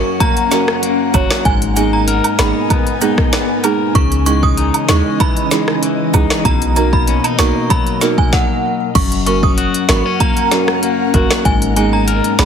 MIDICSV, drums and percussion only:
0, 0, Header, 1, 2, 480
1, 0, Start_track
1, 0, Tempo, 625000
1, 1115, Time_signature, 4, 2, 24, 8
1, 9562, End_track
2, 0, Start_track
2, 0, Title_t, "Drums"
2, 156, Note_on_c, 9, 36, 85
2, 156, Note_on_c, 9, 76, 71
2, 157, Note_on_c, 9, 42, 76
2, 233, Note_off_c, 9, 36, 0
2, 233, Note_off_c, 9, 42, 0
2, 233, Note_off_c, 9, 76, 0
2, 282, Note_on_c, 9, 42, 47
2, 358, Note_off_c, 9, 42, 0
2, 395, Note_on_c, 9, 38, 69
2, 396, Note_on_c, 9, 42, 79
2, 396, Note_on_c, 9, 69, 78
2, 472, Note_off_c, 9, 38, 0
2, 472, Note_off_c, 9, 69, 0
2, 473, Note_off_c, 9, 42, 0
2, 522, Note_on_c, 9, 37, 102
2, 599, Note_off_c, 9, 37, 0
2, 636, Note_on_c, 9, 42, 78
2, 713, Note_off_c, 9, 42, 0
2, 875, Note_on_c, 9, 42, 61
2, 876, Note_on_c, 9, 36, 96
2, 876, Note_on_c, 9, 69, 84
2, 876, Note_on_c, 9, 76, 81
2, 951, Note_off_c, 9, 42, 0
2, 952, Note_off_c, 9, 69, 0
2, 952, Note_off_c, 9, 76, 0
2, 953, Note_off_c, 9, 36, 0
2, 1002, Note_on_c, 9, 38, 103
2, 1008, Note_on_c, 9, 37, 86
2, 1079, Note_off_c, 9, 38, 0
2, 1084, Note_off_c, 9, 37, 0
2, 1115, Note_on_c, 9, 36, 106
2, 1116, Note_on_c, 9, 42, 69
2, 1192, Note_off_c, 9, 36, 0
2, 1192, Note_off_c, 9, 42, 0
2, 1243, Note_on_c, 9, 42, 59
2, 1320, Note_off_c, 9, 42, 0
2, 1355, Note_on_c, 9, 69, 81
2, 1356, Note_on_c, 9, 42, 78
2, 1432, Note_off_c, 9, 69, 0
2, 1433, Note_off_c, 9, 42, 0
2, 1595, Note_on_c, 9, 42, 84
2, 1671, Note_off_c, 9, 42, 0
2, 1722, Note_on_c, 9, 76, 80
2, 1723, Note_on_c, 9, 42, 56
2, 1798, Note_off_c, 9, 76, 0
2, 1800, Note_off_c, 9, 42, 0
2, 1833, Note_on_c, 9, 42, 71
2, 1834, Note_on_c, 9, 38, 120
2, 1835, Note_on_c, 9, 69, 76
2, 1839, Note_on_c, 9, 37, 90
2, 1910, Note_off_c, 9, 38, 0
2, 1910, Note_off_c, 9, 42, 0
2, 1912, Note_off_c, 9, 69, 0
2, 1916, Note_off_c, 9, 37, 0
2, 2075, Note_on_c, 9, 76, 74
2, 2076, Note_on_c, 9, 36, 87
2, 2076, Note_on_c, 9, 42, 76
2, 2152, Note_off_c, 9, 76, 0
2, 2153, Note_off_c, 9, 36, 0
2, 2153, Note_off_c, 9, 42, 0
2, 2201, Note_on_c, 9, 42, 48
2, 2278, Note_off_c, 9, 42, 0
2, 2315, Note_on_c, 9, 69, 76
2, 2316, Note_on_c, 9, 42, 85
2, 2391, Note_off_c, 9, 69, 0
2, 2393, Note_off_c, 9, 42, 0
2, 2441, Note_on_c, 9, 36, 103
2, 2441, Note_on_c, 9, 37, 105
2, 2518, Note_off_c, 9, 36, 0
2, 2518, Note_off_c, 9, 37, 0
2, 2555, Note_on_c, 9, 42, 76
2, 2556, Note_on_c, 9, 38, 125
2, 2561, Note_on_c, 9, 37, 93
2, 2632, Note_off_c, 9, 42, 0
2, 2633, Note_off_c, 9, 38, 0
2, 2638, Note_off_c, 9, 37, 0
2, 2794, Note_on_c, 9, 42, 62
2, 2795, Note_on_c, 9, 69, 80
2, 2795, Note_on_c, 9, 76, 81
2, 2870, Note_off_c, 9, 42, 0
2, 2872, Note_off_c, 9, 69, 0
2, 2872, Note_off_c, 9, 76, 0
2, 3035, Note_on_c, 9, 36, 118
2, 3035, Note_on_c, 9, 42, 70
2, 3111, Note_off_c, 9, 42, 0
2, 3112, Note_off_c, 9, 36, 0
2, 3162, Note_on_c, 9, 42, 60
2, 3239, Note_off_c, 9, 42, 0
2, 3274, Note_on_c, 9, 42, 80
2, 3274, Note_on_c, 9, 69, 84
2, 3351, Note_off_c, 9, 42, 0
2, 3351, Note_off_c, 9, 69, 0
2, 3401, Note_on_c, 9, 36, 92
2, 3478, Note_off_c, 9, 36, 0
2, 3514, Note_on_c, 9, 42, 82
2, 3590, Note_off_c, 9, 42, 0
2, 3641, Note_on_c, 9, 76, 77
2, 3642, Note_on_c, 9, 42, 60
2, 3718, Note_off_c, 9, 76, 0
2, 3719, Note_off_c, 9, 42, 0
2, 3752, Note_on_c, 9, 38, 117
2, 3752, Note_on_c, 9, 42, 66
2, 3755, Note_on_c, 9, 69, 74
2, 3758, Note_on_c, 9, 37, 92
2, 3829, Note_off_c, 9, 38, 0
2, 3829, Note_off_c, 9, 42, 0
2, 3831, Note_off_c, 9, 69, 0
2, 3834, Note_off_c, 9, 37, 0
2, 3995, Note_on_c, 9, 36, 83
2, 3995, Note_on_c, 9, 42, 75
2, 3995, Note_on_c, 9, 76, 74
2, 4072, Note_off_c, 9, 36, 0
2, 4072, Note_off_c, 9, 42, 0
2, 4072, Note_off_c, 9, 76, 0
2, 4121, Note_on_c, 9, 42, 46
2, 4198, Note_off_c, 9, 42, 0
2, 4233, Note_on_c, 9, 69, 80
2, 4234, Note_on_c, 9, 38, 72
2, 4235, Note_on_c, 9, 42, 83
2, 4310, Note_off_c, 9, 69, 0
2, 4311, Note_off_c, 9, 38, 0
2, 4312, Note_off_c, 9, 42, 0
2, 4360, Note_on_c, 9, 37, 99
2, 4437, Note_off_c, 9, 37, 0
2, 4475, Note_on_c, 9, 42, 80
2, 4551, Note_off_c, 9, 42, 0
2, 4713, Note_on_c, 9, 42, 61
2, 4714, Note_on_c, 9, 69, 82
2, 4714, Note_on_c, 9, 76, 84
2, 4715, Note_on_c, 9, 36, 94
2, 4790, Note_off_c, 9, 42, 0
2, 4791, Note_off_c, 9, 69, 0
2, 4791, Note_off_c, 9, 76, 0
2, 4792, Note_off_c, 9, 36, 0
2, 4841, Note_on_c, 9, 38, 102
2, 4846, Note_on_c, 9, 37, 83
2, 4918, Note_off_c, 9, 38, 0
2, 4923, Note_off_c, 9, 37, 0
2, 4954, Note_on_c, 9, 36, 111
2, 4954, Note_on_c, 9, 42, 72
2, 5031, Note_off_c, 9, 36, 0
2, 5031, Note_off_c, 9, 42, 0
2, 5082, Note_on_c, 9, 42, 59
2, 5159, Note_off_c, 9, 42, 0
2, 5193, Note_on_c, 9, 69, 82
2, 5194, Note_on_c, 9, 42, 79
2, 5270, Note_off_c, 9, 69, 0
2, 5271, Note_off_c, 9, 42, 0
2, 5321, Note_on_c, 9, 36, 99
2, 5398, Note_off_c, 9, 36, 0
2, 5434, Note_on_c, 9, 42, 81
2, 5510, Note_off_c, 9, 42, 0
2, 5561, Note_on_c, 9, 76, 79
2, 5563, Note_on_c, 9, 42, 57
2, 5638, Note_off_c, 9, 76, 0
2, 5639, Note_off_c, 9, 42, 0
2, 5672, Note_on_c, 9, 42, 69
2, 5673, Note_on_c, 9, 38, 115
2, 5675, Note_on_c, 9, 69, 76
2, 5678, Note_on_c, 9, 37, 87
2, 5749, Note_off_c, 9, 38, 0
2, 5749, Note_off_c, 9, 42, 0
2, 5752, Note_off_c, 9, 69, 0
2, 5755, Note_off_c, 9, 37, 0
2, 5915, Note_on_c, 9, 76, 70
2, 5916, Note_on_c, 9, 36, 84
2, 5916, Note_on_c, 9, 42, 76
2, 5992, Note_off_c, 9, 36, 0
2, 5992, Note_off_c, 9, 42, 0
2, 5992, Note_off_c, 9, 76, 0
2, 6041, Note_on_c, 9, 42, 47
2, 6118, Note_off_c, 9, 42, 0
2, 6155, Note_on_c, 9, 38, 70
2, 6155, Note_on_c, 9, 69, 76
2, 6156, Note_on_c, 9, 42, 83
2, 6231, Note_off_c, 9, 38, 0
2, 6232, Note_off_c, 9, 42, 0
2, 6232, Note_off_c, 9, 69, 0
2, 6281, Note_on_c, 9, 36, 101
2, 6358, Note_off_c, 9, 36, 0
2, 6395, Note_on_c, 9, 36, 114
2, 6395, Note_on_c, 9, 38, 94
2, 6472, Note_off_c, 9, 36, 0
2, 6472, Note_off_c, 9, 38, 0
2, 6875, Note_on_c, 9, 36, 112
2, 6875, Note_on_c, 9, 42, 72
2, 6875, Note_on_c, 9, 49, 107
2, 6952, Note_off_c, 9, 36, 0
2, 6952, Note_off_c, 9, 42, 0
2, 6952, Note_off_c, 9, 49, 0
2, 7003, Note_on_c, 9, 42, 61
2, 7080, Note_off_c, 9, 42, 0
2, 7115, Note_on_c, 9, 42, 75
2, 7192, Note_off_c, 9, 42, 0
2, 7242, Note_on_c, 9, 36, 101
2, 7319, Note_off_c, 9, 36, 0
2, 7355, Note_on_c, 9, 42, 85
2, 7432, Note_off_c, 9, 42, 0
2, 7483, Note_on_c, 9, 42, 59
2, 7560, Note_off_c, 9, 42, 0
2, 7593, Note_on_c, 9, 38, 118
2, 7593, Note_on_c, 9, 42, 73
2, 7599, Note_on_c, 9, 37, 95
2, 7670, Note_off_c, 9, 38, 0
2, 7670, Note_off_c, 9, 42, 0
2, 7675, Note_off_c, 9, 37, 0
2, 7836, Note_on_c, 9, 36, 82
2, 7836, Note_on_c, 9, 42, 76
2, 7913, Note_off_c, 9, 36, 0
2, 7913, Note_off_c, 9, 42, 0
2, 7961, Note_on_c, 9, 42, 48
2, 8038, Note_off_c, 9, 42, 0
2, 8075, Note_on_c, 9, 38, 72
2, 8076, Note_on_c, 9, 42, 85
2, 8152, Note_off_c, 9, 38, 0
2, 8153, Note_off_c, 9, 42, 0
2, 8202, Note_on_c, 9, 37, 103
2, 8278, Note_off_c, 9, 37, 0
2, 8316, Note_on_c, 9, 42, 79
2, 8392, Note_off_c, 9, 42, 0
2, 8554, Note_on_c, 9, 42, 62
2, 8556, Note_on_c, 9, 36, 92
2, 8631, Note_off_c, 9, 42, 0
2, 8633, Note_off_c, 9, 36, 0
2, 8682, Note_on_c, 9, 38, 108
2, 8688, Note_on_c, 9, 37, 84
2, 8759, Note_off_c, 9, 38, 0
2, 8765, Note_off_c, 9, 37, 0
2, 8795, Note_on_c, 9, 36, 110
2, 8795, Note_on_c, 9, 42, 73
2, 8872, Note_off_c, 9, 36, 0
2, 8872, Note_off_c, 9, 42, 0
2, 8923, Note_on_c, 9, 42, 61
2, 9000, Note_off_c, 9, 42, 0
2, 9035, Note_on_c, 9, 42, 82
2, 9112, Note_off_c, 9, 42, 0
2, 9275, Note_on_c, 9, 42, 87
2, 9351, Note_off_c, 9, 42, 0
2, 9403, Note_on_c, 9, 42, 56
2, 9480, Note_off_c, 9, 42, 0
2, 9513, Note_on_c, 9, 42, 72
2, 9514, Note_on_c, 9, 38, 116
2, 9519, Note_on_c, 9, 37, 94
2, 9562, Note_off_c, 9, 37, 0
2, 9562, Note_off_c, 9, 38, 0
2, 9562, Note_off_c, 9, 42, 0
2, 9562, End_track
0, 0, End_of_file